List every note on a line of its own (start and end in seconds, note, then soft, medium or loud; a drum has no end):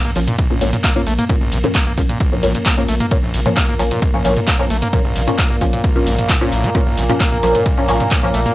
0.00 8.55 A#2 medium
0.00 8.55 A#3 medium
0.05 0.15 A#1 medium
0.05 0.11 A#3 medium
0.05 mid tom medium
0.16 0.27 A#1 loud
0.16 0.34 F3 medium
0.16 0.20 F3 medium
0.16 0.34 A#3 medium
0.16 0.34 C#4 medium
0.16 open hi-hat loud
0.16 shaker medium
0.28 0.37 A#2 medium
0.28 closed hi-hat medium
0.28 mid tom medium
0.28 shaker soft
0.39 0.48 A#1 medium
0.39 kick loud
0.39 closed hi-hat medium
0.39 ride medium
0.39 shaker soft
0.50 0.61 A#1 medium
0.50 0.63 A#1 medium
0.50 0.59 F3 medium
0.50 0.59 A#3 medium
0.50 0.59 C#4 loud
0.50 mid tom medium
0.61 0.73 A#1 loud
0.61 0.71 A#2 medium
0.61 0.79 F3 medium
0.61 0.79 A#3 medium
0.61 0.79 C#4 loud
0.61 open hi-hat loud
0.61 shaker medium
0.73 0.77 A#2 medium
0.73 closed hi-hat medium
0.73 mid tom medium
0.73 shaker soft
0.84 0.94 A#3 medium
0.84 kick loud
0.84 clap loud
0.84 closed hi-hat medium
0.84 ride medium
0.84 shaker soft
0.96 1.06 A#1 medium
0.96 1.06 F3 medium
0.96 1.06 A#3 medium
0.96 1.02 A#3 medium
0.96 1.06 C#4 loud
0.96 mid tom medium
1.07 1.18 A#1 loud
1.07 1.13 A3 loud
1.07 open hi-hat loud
1.07 shaker medium
1.18 1.25 A#3 medium
1.18 closed hi-hat medium
1.18 mid tom medium
1.18 shaker soft
1.29 1.36 A#2 medium
1.29 1.47 F3 medium
1.29 1.47 A#3 medium
1.29 1.47 C#4 medium
1.29 kick loud
1.29 closed hi-hat medium
1.29 ride medium
1.29 shaker soft
1.41 1.52 A#1 medium
1.41 1.54 A#1 medium
1.41 mid tom medium
1.52 1.64 A#1 loud
1.52 1.59 D#3 loud
1.52 open hi-hat loud
1.52 shaker medium
1.64 1.68 A#2 medium
1.64 1.75 F3 medium
1.64 1.75 A#3 medium
1.64 1.75 C#4 loud
1.64 closed hi-hat medium
1.64 mid tom medium
1.64 shaker soft
1.75 1.85 A#3 medium
1.75 kick loud
1.75 clap loud
1.75 closed hi-hat medium
1.75 ride medium
1.75 shaker soft
1.87 1.97 A#1 medium
1.87 1.93 A#3 medium
1.87 mid tom medium
1.98 2.09 A#1 loud
1.98 2.15 F3 medium
1.98 2.02 F3 medium
1.98 2.15 A#3 medium
1.98 2.15 C#4 medium
1.98 kick medium
1.98 open hi-hat loud
1.98 shaker medium
2.09 2.18 A#2 medium
2.09 closed hi-hat medium
2.09 mid tom medium
2.09 shaker soft
2.20 2.30 A#1 medium
2.20 kick loud
2.20 closed hi-hat medium
2.20 ride medium
2.20 shaker soft
2.32 2.45 A#1 medium
2.32 2.43 A#1 medium
2.32 2.41 F3 medium
2.32 2.41 A#3 medium
2.32 2.41 C#4 medium
2.32 mid tom medium
2.43 2.55 A#1 loud
2.43 2.53 A#2 medium
2.43 2.61 F3 medium
2.43 2.61 A#3 medium
2.43 2.61 C#4 loud
2.43 open hi-hat loud
2.43 shaker medium
2.55 2.58 A#2 medium
2.55 closed hi-hat medium
2.55 mid tom medium
2.55 shaker soft
2.66 2.76 A#3 medium
2.66 kick loud
2.66 clap loud
2.66 closed hi-hat medium
2.66 ride medium
2.66 shaker soft
2.78 2.88 A#1 medium
2.78 2.88 F3 medium
2.78 2.88 A#3 medium
2.78 2.84 A#3 medium
2.78 2.88 C#4 loud
2.78 mid tom medium
2.88 3.00 A#1 loud
2.88 2.95 A3 loud
2.88 open hi-hat loud
2.88 shaker medium
3.00 3.06 A#3 medium
3.00 closed hi-hat medium
3.00 mid tom loud
3.00 shaker soft
3.11 3.18 A#2 medium
3.11 3.29 F3 medium
3.11 3.29 A#3 medium
3.11 3.29 C#4 medium
3.11 kick loud
3.11 closed hi-hat medium
3.11 ride medium
3.11 shaker soft
3.23 3.33 A#1 medium
3.23 3.35 A#1 medium
3.23 mid tom medium
3.34 3.46 A#1 loud
3.34 3.40 D#3 loud
3.34 open hi-hat loud
3.34 shaker medium
3.46 3.49 A#2 medium
3.46 3.56 F3 medium
3.46 3.56 A#3 medium
3.46 3.56 C#4 medium
3.46 closed hi-hat medium
3.46 mid tom loud
3.46 shaker soft
3.57 3.66 A#3 medium
3.57 kick loud
3.57 clap loud
3.57 closed hi-hat medium
3.57 ride medium
3.57 shaker soft
3.68 3.79 A#1 medium
3.68 3.75 A#3 medium
3.68 mid tom loud
3.79 3.91 A#1 loud
3.79 3.83 F3 medium
3.79 3.97 F3 medium
3.79 3.97 A#3 medium
3.79 3.97 C#4 medium
3.79 open hi-hat loud
3.79 shaker medium
3.91 4.00 A#2 medium
3.91 closed hi-hat medium
3.91 mid tom medium
3.91 shaker soft
4.02 4.12 A#1 medium
4.02 kick loud
4.02 closed hi-hat medium
4.02 ride medium
4.02 shaker soft
4.14 4.26 A#1 medium
4.14 4.24 A#1 medium
4.14 4.23 F3 medium
4.14 4.23 A#3 medium
4.14 4.23 C#4 loud
4.14 mid tom loud
4.25 4.36 A#1 loud
4.25 4.35 A#2 medium
4.25 4.43 F3 medium
4.25 4.43 A#3 medium
4.25 4.43 C#4 loud
4.25 open hi-hat loud
4.25 shaker medium
4.37 4.40 A#2 medium
4.37 closed hi-hat medium
4.37 mid tom loud
4.37 shaker soft
4.48 4.57 A#3 medium
4.48 kick loud
4.48 clap loud
4.48 closed hi-hat medium
4.48 ride medium
4.48 shaker soft
4.59 4.70 A#1 medium
4.59 4.70 F3 medium
4.59 4.70 A#3 medium
4.59 4.65 A#3 medium
4.59 4.70 C#4 loud
4.59 mid tom medium
4.70 4.82 A#1 loud
4.70 4.77 A3 loud
4.70 open hi-hat loud
4.70 shaker medium
4.82 4.88 A#3 medium
4.82 closed hi-hat medium
4.82 mid tom loud
4.82 shaker soft
4.93 5.00 A#2 medium
4.93 5.11 F3 medium
4.93 5.11 A#3 medium
4.93 5.11 C#4 medium
4.93 kick loud
4.93 closed hi-hat medium
4.93 ride medium
4.93 shaker soft
5.05 5.15 A#1 medium
5.05 5.17 A#1 medium
5.05 mid tom loud
5.16 5.27 A#1 loud
5.16 5.22 D#3 loud
5.16 open hi-hat loud
5.16 shaker medium
5.28 5.31 A#2 medium
5.28 5.38 F3 medium
5.28 5.38 A#3 medium
5.28 5.38 C#4 medium
5.28 closed hi-hat medium
5.28 mid tom medium
5.28 shaker soft
5.39 5.48 A#3 medium
5.39 kick loud
5.39 clap loud
5.39 closed hi-hat medium
5.39 ride medium
5.39 shaker soft
5.50 5.61 A#1 medium
5.50 5.56 A#3 medium
5.50 mid tom loud
5.61 5.73 A#1 loud
5.61 5.79 F3 medium
5.61 5.65 F3 medium
5.61 5.79 A#3 medium
5.61 5.79 C#4 medium
5.61 kick medium
5.61 open hi-hat loud
5.61 shaker medium
5.73 5.82 A#2 medium
5.73 closed hi-hat medium
5.73 mid tom loud
5.73 shaker soft
5.84 5.94 A#1 medium
5.84 kick loud
5.84 closed hi-hat medium
5.84 ride medium
5.84 shaker soft
5.96 6.08 A#1 medium
5.96 6.06 A#1 medium
5.96 6.05 F3 medium
5.96 6.05 A#3 medium
5.96 6.05 C#4 loud
5.96 mid tom medium
6.07 6.18 A#1 loud
6.07 6.16 A2 loud
6.07 open hi-hat loud
6.07 shaker medium
6.19 6.31 A#1 medium
6.19 closed hi-hat medium
6.19 mid tom loud
6.19 shaker soft
6.29 6.36 A#2 medium
6.29 kick loud
6.29 clap loud
6.29 closed hi-hat medium
6.29 ride medium
6.29 shaker soft
6.41 6.52 A#1 medium
6.41 6.54 A#2 medium
6.41 6.52 F3 medium
6.41 6.52 A#3 medium
6.41 6.52 C#4 medium
6.41 mid tom loud
6.52 6.64 A#1 loud
6.52 6.65 A2 medium
6.52 open hi-hat loud
6.52 shaker medium
6.64 6.70 A#3 medium
6.64 closed hi-hat medium
6.64 mid tom medium
6.64 shaker soft
6.75 6.81 A#2 medium
6.75 6.93 F3 medium
6.75 6.93 A#3 medium
6.75 6.93 C#4 medium
6.75 kick loud
6.75 closed hi-hat medium
6.75 ride medium
6.75 shaker soft
6.87 6.99 A#1 medium
6.87 6.97 A#1 medium
6.87 mid tom loud
6.97 7.09 A#1 loud
6.97 7.04 D#3 loud
6.97 open hi-hat loud
6.97 shaker medium
7.09 7.13 A#2 medium
7.09 7.20 F3 medium
7.09 7.20 A#3 medium
7.09 7.20 C#4 medium
7.09 closed hi-hat medium
7.09 mid tom medium
7.09 shaker soft
7.20 7.30 A#3 medium
7.20 kick loud
7.20 clap loud
7.20 closed hi-hat medium
7.20 ride medium
7.20 shaker soft
7.32 7.42 A#1 medium
7.32 7.38 A#3 medium
7.32 mid tom loud
7.43 7.55 A#1 loud
7.43 7.47 F3 medium
7.43 7.61 F3 medium
7.43 7.61 A#3 medium
7.43 7.61 C#4 medium
7.43 open hi-hat loud
7.43 shaker medium
7.55 7.64 A#2 medium
7.55 closed hi-hat medium
7.55 mid tom loud
7.55 shaker soft
7.66 7.76 A#1 medium
7.66 kick loud
7.66 closed hi-hat medium
7.66 ride medium
7.66 shaker soft
7.78 7.90 A#1 medium
7.78 7.88 A#1 medium
7.78 7.86 F3 medium
7.78 7.86 A#3 medium
7.78 7.86 C#4 loud
7.78 mid tom medium
7.88 8.00 A#1 loud
7.88 7.98 A#2 medium
7.88 8.06 F3 medium
7.88 8.06 A#3 medium
7.88 8.06 C#4 loud
7.88 open hi-hat loud
7.88 shaker medium
8.00 8.04 A#2 medium
8.00 closed hi-hat medium
8.00 mid tom loud
8.00 shaker soft
8.11 8.21 A#3 medium
8.11 kick loud
8.11 clap loud
8.11 closed hi-hat medium
8.11 ride medium
8.11 shaker soft
8.23 8.33 A#1 medium
8.23 8.34 F3 medium
8.23 8.29 A#3 medium
8.23 8.34 A#3 medium
8.23 8.34 C#4 loud
8.23 mid tom loud
8.34 8.46 A#1 loud
8.34 8.40 A3 loud
8.34 open hi-hat loud
8.34 shaker medium
8.46 8.52 A#3 medium
8.46 closed hi-hat medium
8.46 mid tom medium
8.46 shaker soft